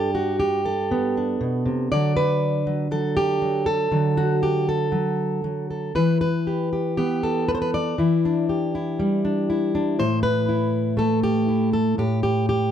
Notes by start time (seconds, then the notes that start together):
Already playing: G2 D4 G4 A4
0.15 F#4
0.40 G4
0.65 A4
0.91 B3
1.17 D4
1.41 B2
1.66 C3
1.92 D3 F#3 A4 D5
2.17 B4
2.67 F#3
2.91 F#3 A4
3.17 G4
3.42 F#3
3.66 A4
3.91 D3 F#3
4.17 F#4
4.43 G4
4.69 A4
4.92 F#3
5.44 F#3
5.70 A4
5.95 E3 B4
6.21 B4
6.47 G4
6.73 G4
6.97 B3 G4
7.23 A4
7.48 B4
7.55 C5
7.62 B4
7.74 D5
7.98 E3 E4
8.25 D4
8.49 G4
8.75 E4
8.99 G3
9.25 D4
9.50 E4
9.75 D4
9.99 A2 C5
10.23 B4
10.49 E4
10.97 A3 A4
11.23 G4
11.49 E4
11.73 A4
11.98 A2 G4
12.23 G4
12.49 G4